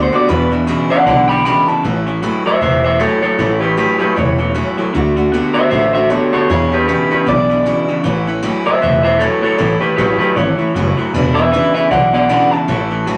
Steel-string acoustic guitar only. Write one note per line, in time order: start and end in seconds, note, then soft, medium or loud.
0.00 0.13 D3 medium
0.00 0.14 A3 medium
0.00 0.13 D4 medium
0.00 0.11 F#4 medium
0.12 0.29 A3 soft
0.12 0.28 D4 soft
0.12 0.29 F#4 medium
0.29 0.52 E2 medium
0.29 0.52 B2 medium
0.29 0.52 E3 medium
0.29 0.51 G#3 medium
0.29 0.51 D4 medium
0.29 0.50 E4 medium
0.52 0.67 E3 soft
0.52 0.67 G#3 soft
0.52 0.67 D4 medium
0.52 0.68 E4 medium
0.67 0.91 E2 medium
0.67 0.91 B2 loud
0.67 0.91 E3 loud
0.67 0.90 G#3 loud
0.67 0.90 D4 loud
0.67 0.89 E4 medium
0.90 1.06 E3 soft
0.90 1.07 G#3 soft
0.90 1.07 D4 medium
0.90 1.06 E4 medium
1.07 1.30 E3 medium
1.07 1.30 G#3 medium
1.07 1.30 D4 medium
1.07 1.29 E4 medium
1.30 1.45 E3 soft
1.30 1.45 G#3 medium
1.30 1.45 D4 soft
1.30 1.46 E4 medium
1.45 1.68 E2 medium
1.45 1.69 B2 medium
1.45 1.69 E3 medium
1.45 1.68 G#3 medium
1.45 1.68 D4 medium
1.45 1.67 E4 medium
1.68 1.83 E3 soft
1.68 1.84 G#3 medium
1.68 1.85 D4 medium
1.68 1.84 E4 medium
1.84 2.07 A2 medium
1.84 2.07 E3 medium
1.84 2.07 A3 medium
1.84 2.07 C#4 medium
1.84 2.06 E4 medium
2.07 2.22 A3 soft
2.07 2.23 C#4 medium
2.07 2.22 E4 medium
2.23 2.46 A2 medium
2.23 2.46 E3 medium
2.23 2.45 A3 medium
2.23 2.44 C#4 medium
2.23 2.44 E4 loud
2.45 2.61 A3 soft
2.45 2.61 C#4 soft
2.45 2.61 E4 medium
2.61 2.84 E3 medium
2.61 2.84 A3 medium
2.61 2.83 C#4 medium
2.61 2.82 E4 medium
2.83 2.99 A3 soft
2.83 3.00 C#4 soft
2.83 3.00 E4 medium
3.00 3.23 A2 medium
3.00 3.23 E3 medium
3.00 3.24 A3 medium
3.00 3.22 C#4 medium
3.00 3.22 E4 loud
3.23 3.38 A3 soft
3.23 3.39 C#4 soft
3.23 3.39 E4 medium
3.39 3.62 A2 medium
3.39 3.62 E3 medium
3.39 3.62 A3 medium
3.39 3.61 C#4 medium
3.39 3.60 E4 medium
3.61 3.76 A3 soft
3.61 3.77 C#4 soft
3.61 3.77 E4 medium
3.77 4.01 A2 medium
3.77 4.01 E3 medium
3.77 4.00 A3 medium
3.77 3.99 C#4 medium
3.77 3.98 E4 medium
4.00 4.16 A3 soft
4.00 4.16 C#4 soft
4.00 4.16 E4 soft
4.16 4.40 E3 medium
4.16 4.39 A3 medium
4.16 4.38 C#4 medium
4.16 4.37 E4 medium
4.38 4.54 A3 soft
4.38 4.54 C#4 soft
4.38 4.55 E4 medium
4.55 4.78 A2 medium
4.55 4.78 E3 medium
4.55 4.78 A3 medium
4.55 4.77 C#4 medium
4.55 4.77 E4 medium
4.78 4.94 A3 soft
4.78 4.95 C#4 medium
4.78 4.94 E4 medium
4.95 5.18 D3 medium
4.95 5.18 A3 medium
4.95 5.17 D4 medium
4.95 5.16 F#4 medium
5.17 5.32 A3 medium
5.17 5.33 D4 medium
5.17 5.33 F#4 medium
5.34 5.57 D3 medium
5.34 5.56 A3 medium
5.34 5.55 D4 loud
5.34 5.54 F#4 medium
5.55 5.70 A3 soft
5.55 5.71 D4 soft
5.55 5.72 F#4 medium
5.71 5.94 D3 medium
5.71 5.95 A3 medium
5.71 5.94 D4 medium
5.71 5.94 F#4 medium
5.95 6.09 A3 soft
5.95 6.10 D4 soft
5.95 6.10 F#4 medium
6.10 6.33 D3 medium
6.10 6.34 A3 medium
6.10 6.33 D4 medium
6.10 6.32 F#4 medium
6.33 6.50 A3 soft
6.33 6.50 D4 medium
6.33 6.49 F#4 medium
6.50 6.73 E2 medium
6.50 6.73 B2 medium
6.50 6.73 E3 medium
6.50 6.72 G#3 medium
6.50 6.72 D4 medium
6.50 6.71 E4 medium
6.72 6.88 E3 soft
6.72 6.88 G#3 soft
6.72 6.88 D4 medium
6.72 6.88 E4 medium
6.88 7.11 E2 medium
6.88 7.11 B2 medium
6.88 7.12 E3 medium
6.88 7.11 G#3 medium
6.88 7.10 D4 medium
6.88 7.10 E4 loud
7.11 7.25 E3 soft
7.11 7.26 G#3 soft
7.11 7.26 D4 medium
7.11 7.27 E4 medium
7.26 7.50 E3 medium
7.26 7.50 G#3 medium
7.26 7.50 D4 medium
7.26 7.48 E4 medium
7.50 7.65 E3 soft
7.50 7.65 G#3 soft
7.50 7.66 D4 soft
7.50 7.66 E4 medium
7.66 7.89 E2 medium
7.66 7.89 B2 medium
7.66 7.89 E3 medium
7.66 7.89 G#3 medium
7.66 7.88 D4 medium
7.66 7.87 E4 medium
7.88 8.03 E3 soft
7.88 8.05 G#3 medium
7.88 8.05 D4 medium
7.88 8.04 E4 medium
8.04 8.27 A2 medium
8.04 8.27 E3 medium
8.04 8.28 A3 medium
8.04 8.27 C#4 medium
8.04 8.26 E4 medium
8.27 8.41 A3 medium
8.27 8.42 C#4 medium
8.27 8.42 E4 medium
8.43 8.66 A2 loud
8.43 8.66 E3 loud
8.43 8.66 A3 medium
8.43 8.65 C#4 loud
8.43 8.64 E4 loud
8.66 8.82 A3 soft
8.66 8.82 C#4 medium
8.66 8.82 E4 medium
8.82 9.05 E3 medium
8.82 9.05 A3 medium
8.82 9.05 C#4 medium
9.05 9.20 A3 soft
9.05 9.20 C#4 soft
9.05 9.21 E4 medium
9.20 9.43 A2 medium
9.20 9.44 E3 medium
9.20 9.44 A3 medium
9.20 9.43 C#4 medium
9.20 9.42 E4 medium
9.44 9.57 A3 soft
9.44 9.58 C#4 medium
9.44 9.58 E4 medium
9.58 9.82 A2 medium
9.58 9.82 E3 medium
9.58 9.82 A3 medium
9.58 9.81 C#4 medium
9.58 9.80 E4 medium
9.81 9.98 A3 soft
9.81 9.98 C#4 soft
9.81 9.98 E4 medium
9.98 10.21 A2 medium
9.98 10.21 E3 medium
9.98 10.21 A3 medium
9.98 10.21 C#4 medium
9.98 10.19 E4 medium
10.21 10.36 A3 soft
10.21 10.37 C#4 soft
10.21 10.37 E4 medium
10.36 10.59 E3 medium
10.36 10.59 A3 medium
10.36 10.59 C#4 medium
10.36 10.57 E4 medium
10.59 10.75 A3 soft
10.59 10.75 C#4 soft
10.59 10.75 E4 medium
10.76 10.98 A2 medium
10.76 10.98 E3 medium
10.76 10.99 A3 medium
10.76 10.98 C#4 medium
10.76 10.97 E4 medium
10.98 11.15 A3 soft
10.98 11.14 C#4 medium
10.98 11.14 E4 medium
11.14 11.37 E2 medium
11.14 11.37 B2 medium
11.14 11.37 E3 medium
11.14 11.37 G#3 medium
11.14 11.36 D4 loud
11.14 11.36 E4 loud
11.37 11.53 E3 soft
11.37 11.53 G#3 soft
11.37 11.53 D4 soft
11.37 11.53 E4 medium
11.53 11.76 E2 medium
11.53 11.76 B2 medium
11.53 11.76 E3 medium
11.53 11.76 G#3 medium
11.53 11.75 D4 medium
11.53 11.74 E4 medium
11.76 11.90 E3 soft
11.76 11.91 G#3 medium
11.76 11.92 D4 medium
11.76 11.91 E4 medium
11.91 12.14 E3 medium
11.91 12.15 G#3 medium
11.91 12.14 D4 medium
11.91 12.13 E4 medium
12.14 12.29 E3 soft
12.14 12.29 G#3 soft
12.14 12.29 D4 soft
12.14 12.29 E4 medium
12.29 12.52 E2 medium
12.29 12.52 B2 medium
12.29 12.52 E3 medium
12.29 12.53 G#3 medium
12.29 12.53 D4 medium
12.29 12.52 E4 medium
12.53 12.67 E3 soft
12.53 12.69 G#3 soft
12.53 12.68 D4 medium
12.53 12.68 E4 medium
12.68 12.91 A2 medium
12.68 12.91 E3 medium
12.68 12.91 A3 medium
12.68 12.90 C#4 medium
12.68 12.89 E4 medium
12.91 13.06 A3 soft
12.91 13.07 C#4 soft
12.91 13.07 E4 medium
13.07 13.17 A2 medium
13.07 13.17 E3 loud
13.07 13.17 A3 medium
13.07 13.17 C#4 loud
13.07 13.17 E4 loud